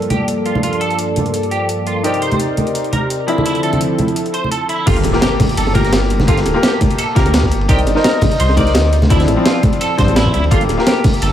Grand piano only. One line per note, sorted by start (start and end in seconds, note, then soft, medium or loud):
0.00 2.02 A#3 medium
0.00 2.02 F4 medium
0.00 2.03 G4 medium
0.00 2.03 A4 medium
2.03 3.25 D#4 medium
2.03 3.26 A#4 medium
2.03 3.26 C5 medium
2.03 3.27 D5 medium
3.27 4.84 F3 medium
3.27 4.85 C4 medium
3.27 4.85 D4 medium
3.27 4.86 E4 medium
4.86 5.11 A#3 medium
4.86 5.12 F4 medium
4.86 5.12 G4 medium
4.86 5.12 A4 medium
5.13 5.72 A#3 medium
5.13 5.73 F4 medium
5.13 5.73 G4 medium
5.13 5.74 A#4 medium
5.74 6.25 A#3 medium
5.74 6.26 F4 medium
5.74 6.26 G4 medium
6.27 6.52 A#3 medium
6.27 6.53 F4 medium
6.27 6.53 G4 medium
6.27 6.53 A4 medium
6.54 7.13 A#3 medium
6.54 7.14 F4 medium
6.54 7.14 G4 medium
6.54 7.15 A#4 medium
7.15 7.67 A#3 medium
7.15 7.67 F4 medium
7.15 7.67 G4 medium
7.68 7.93 D#4 medium
7.68 7.94 A#4 medium
7.68 7.94 C5 medium
7.68 7.94 D5 medium
7.95 8.55 D#4 medium
7.95 8.55 A#4 medium
7.95 8.56 C5 medium
7.95 8.56 D#5 medium
8.57 8.91 D#4 medium
8.57 8.92 A#4 medium
8.57 8.92 C5 medium
9.10 9.35 F3 medium
9.10 9.35 C4 medium
9.10 9.35 D4 medium
9.10 9.36 E4 medium
9.36 9.96 F3 medium
9.36 9.96 C4 medium
9.36 9.97 D4 medium
9.97 10.49 F3 medium
9.97 10.49 C4 medium
9.97 10.50 D4 medium
10.51 10.76 A#3 medium
10.51 10.76 F4 medium
10.51 10.77 G4 medium
10.51 10.77 A4 medium
10.78 11.32 A#3 medium
10.78 11.32 F4 medium
10.78 11.32 G4 medium
10.78 11.32 A#4 medium